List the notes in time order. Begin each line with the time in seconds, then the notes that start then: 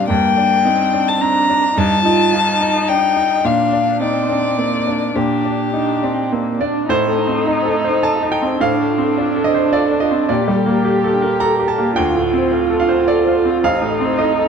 Already playing: A#2 C4 D4 D#4
0.08 G2 A#3 G5
0.37 D4
0.65 C4 D#4
0.93 D4
1.08 A5
1.21 C4 D4 A#5
1.49 D4
1.76 G2 D#4 A5
2.04 D#4 F4
2.32 D#4 F4
2.61 D#4
2.88 D4 G5
3.17 D#4
3.44 A#2 D4 F5
3.73 D4
4.01 C4 D#4 D5
4.29 D4
4.58 A#3 C4
4.87 D4
5.15 A#2 D4 G4
5.45 D4
5.73 D4 D#4
6.03 C4 D4
6.32 A#3 C4
6.60 D4 D5
6.89 A2 A3 D#4 C5
7.05 A3 C4
7.18 D#4
7.27 C4
7.33 A4
7.46 D#4
7.61 C4
7.65 A4
7.75 A3
7.84 C4 C5
8.03 D#4 A4 A5
8.18 A4
8.23 D#4
8.32 D#4 G5
8.42 C4
8.60 A2 C4 D4 F5
8.74 D4
8.79 A3
8.89 F4
8.98 C4
9.04 A4
9.17 D4 F4
9.30 D4
9.36 A4
9.44 C4 D#5
9.54 D4 C5
9.72 F4 A4 D5
9.85 A4
9.91 D4
10.00 F4 D#5
10.11 C4 D4
10.28 A#2 D4 G4 D5
10.41 G4
10.48 G3
10.56 A4
10.66 A#3 A#4
10.84 G4 A4
10.98 G4
11.04 A4
11.13 D4
11.22 G4 A#4
11.40 A4 A#5
11.53 A#4
11.59 G4
11.67 A4 A5
11.78 A#3 G4
11.95 D2 D4 F4 G5
12.09 F4
12.15 A2
12.23 A4
12.33 C4 C5
12.51 F4 A4
12.65 F4
12.70 A4
12.80 D4 F5
12.89 C5
12.94 F4
13.07 A4 D5
13.23 C5
13.27 F4
13.36 A4
13.45 C4 F4
13.62 A1 C4 D#4 F5
13.77 D#4
13.82 A2
13.91 A4
14.01 C4
14.05 C5
14.18 D#4 A4 D#5
14.33 D#4
14.38 A4